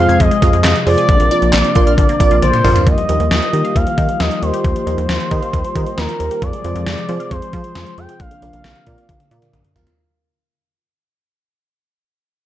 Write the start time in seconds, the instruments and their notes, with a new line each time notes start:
Already playing: analog synth pad C3 F3 G#3 F4 G#4, fm electric piano F4 G#4 C5, analog synth lead F5
0.09 analog synth bass F2, synth arpeggio sound G#6, closed hi-hat
0.20 analog synth bass F2, synth arpeggio sound F3, analog synth lead D#5, kick, closed hi-hat
0.31 synth arpeggio sound G#3, closed hi-hat
0.42 analog synth bass F2, fm electric piano F4 G#4 D#5, synth arpeggio sound F5, kick, closed hi-hat
0.53 analog synth bass F2, synth arpeggio sound G#4, closed hi-hat
0.64 analog synth bass F2, analog synth lead D#5, synth arpeggio sound F5, snare, clap, closed hi-hat
0.76 closed hi-hat
0.86 analog synth bass F2, fm electric piano F4 G#4 C5, synth arpeggio sound G#4, analog synth lead D5, open hi-hat
0.98 synth arpeggio sound G#4, closed hi-hat
1.09 analog synth bass A#1, synth arpeggio sound D3, analog synth pad A#3 D4, kick, closed hi-hat
1.20 analog synth bass A#1, synth arpeggio sound A#3, closed hi-hat
1.31 fm electric piano F4 A#4 D5, synth arpeggio sound D5, closed hi-hat
1.42 analog synth bass A#1, closed hi-hat
1.53 analog synth bass A#1, synth arpeggio sound D5, snare, clap, closed hi-hat
1.64 closed hi-hat
1.75 analog synth bass A#1, fm electric piano F4 A#4 D5, synth arpeggio sound C6, kick, closed hi-hat
1.87 analog synth bass A#1, synth arpeggio sound F6, closed hi-hat
1.98 analog synth bass A#1, synth arpeggio sound D3, kick, closed hi-hat
2.09 synth arpeggio sound A#3, closed hi-hat
2.20 analog synth bass A#1, fm electric piano F4 A#4 D5, synth arpeggio sound D5, kick, closed hi-hat
2.31 analog synth bass A#1, synth arpeggio sound F4, closed hi-hat
2.42 analog synth bass A#1, analog synth lead C5, synth arpeggio sound D5, closed hi-hat, high tom
2.53 closed hi-hat, mid tom
2.64 analog synth bass A#1, fm electric piano F4 A#4 D5, synth arpeggio sound F4, mid tom, open hi-hat
2.76 synth arpeggio sound F4, closed hi-hat, floor tom
2.87 analog synth bass D#2, analog synth pad D#3 A#3, synth arpeggio sound F3, analog synth lead D#5, kick, closed hi-hat
2.98 synth arpeggio sound F3, closed hi-hat
3.09 analog synth bass D#2, synth arpeggio sound F3, fm electric piano G4 A#4 D#5, closed hi-hat
3.20 analog synth bass D#2, synth arpeggio sound F3, closed hi-hat
3.31 analog synth bass D#2, synth arpeggio sound F3, analog synth lead D#5, snare, closed hi-hat
3.42 synth arpeggio sound F3, closed hi-hat
3.53 analog synth bass D#3, synth arpeggio sound D#4, fm electric piano G4 A#4 D#5, closed hi-hat
3.65 synth arpeggio sound F5, closed hi-hat
3.76 analog synth bass D#2, synth arpeggio sound F3, analog synth lead F5, kick, closed hi-hat
3.87 synth arpeggio sound F3, closed hi-hat
3.98 analog synth bass D#3, fm electric piano G4 A#4 D#5, kick, closed hi-hat
4.09 synth arpeggio sound F3, closed hi-hat
4.20 analog synth bass D#2, synth arpeggio sound F3, analog synth lead D#5, snare, closed hi-hat
4.31 synth arpeggio sound F3, closed hi-hat
4.42 analog synth bass D#2, fm electric piano G4 A#4 D#5, analog synth lead C5, closed hi-hat
4.53 synth arpeggio sound G4, closed hi-hat
4.64 analog synth bass D#2, synth arpeggio sound F3, kick, closed hi-hat
4.76 synth arpeggio sound F3, closed hi-hat
4.87 analog synth bass D#2, synth arpeggio sound F3, fm electric piano G4 A#4 D#5, closed hi-hat
4.98 analog synth bass D#2, synth arpeggio sound F3, closed hi-hat
5.09 analog synth bass D#2, synth arpeggio sound F3, snare, closed hi-hat
5.20 synth arpeggio sound F3, closed hi-hat
5.31 analog synth bass D#3, synth arpeggio sound D#4, fm electric piano G4 A#4 D#5, kick, closed hi-hat
5.42 synth arpeggio sound F5, closed hi-hat
5.53 analog synth bass D#2, synth arpeggio sound F3, kick, closed hi-hat
5.64 synth arpeggio sound F3, closed hi-hat
5.75 analog synth bass D#3, fm electric piano G4 A#4 D#5, kick, closed hi-hat
5.86 synth arpeggio sound F3, closed hi-hat
5.98 analog synth bass D#2, synth arpeggio sound F3, analog synth lead A#4, snare, closed hi-hat
6.09 synth arpeggio sound F3, closed hi-hat
6.20 analog synth bass D#2, fm electric piano G4 A#4 C5, closed hi-hat
6.31 synth arpeggio sound G4, closed hi-hat
6.42 analog synth bass F2, analog synth pad C3 F3 G#3 G#4, synth arpeggio sound F3, analog synth lead D5, kick, closed hi-hat
6.53 synth arpeggio sound F3, closed hi-hat
6.64 analog synth bass F2, synth arpeggio sound F3, fm electric piano F4 G#4 C5, closed hi-hat
6.75 analog synth bass F2, synth arpeggio sound F3, closed hi-hat
6.87 analog synth bass F2, synth arpeggio sound F3, snare, closed hi-hat
6.98 synth arpeggio sound F3, closed hi-hat
7.09 analog synth bass F3, synth arpeggio sound C4, fm electric piano F4 G#4 C5, closed hi-hat
7.20 synth arpeggio sound F5, closed hi-hat
7.31 analog synth bass F2, synth arpeggio sound F3, analog synth lead C5, kick, closed hi-hat
7.42 synth arpeggio sound F3, closed hi-hat
7.53 analog synth bass F3, fm electric piano F4 G#4 C5, kick, closed hi-hat
7.64 synth arpeggio sound F3, closed hi-hat
7.75 analog synth bass F2, synth arpeggio sound F3, snare, closed hi-hat
7.86 synth arpeggio sound F3, closed hi-hat
7.98 analog synth bass F2, fm electric piano F4 G#4 C5, analog synth lead G5, closed hi-hat
8.09 synth arpeggio sound G#4, closed hi-hat
8.20 analog synth bass A#1, analog synth pad C3 A#3 D4, synth arpeggio sound D3, analog synth lead F5, kick, closed hi-hat
8.31 synth arpeggio sound D3, closed hi-hat
8.42 analog synth bass A#1, synth arpeggio sound D3, fm electric piano F4 A#4 D5, closed hi-hat
8.53 analog synth bass A#1, synth arpeggio sound D3, closed hi-hat
8.64 analog synth bass A#1, synth arpeggio sound D3, snare, closed hi-hat
8.75 synth arpeggio sound D3, closed hi-hat
8.86 analog synth bass A#2, synth arpeggio sound C4, fm electric piano F4 A#4 D5, kick, closed hi-hat
8.98 synth arpeggio sound D5, closed hi-hat
9.09 analog synth bass A#1, synth arpeggio sound D3, kick, closed hi-hat, high tom
9.20 synth arpeggio sound D3, closed hi-hat, high tom
9.31 analog synth bass A#2, fm electric piano F4 A#4 D5, closed hi-hat
9.42 synth arpeggio sound D3, closed hi-hat, mid tom
9.53 analog synth bass A#1, synth arpeggio sound D3, closed hi-hat, mid tom
9.65 synth arpeggio sound D3, closed hi-hat
9.76 analog synth bass A#1, fm electric piano F4 A#4 F5, closed hi-hat, floor tom
9.87 synth arpeggio sound F4, closed hi-hat, floor tom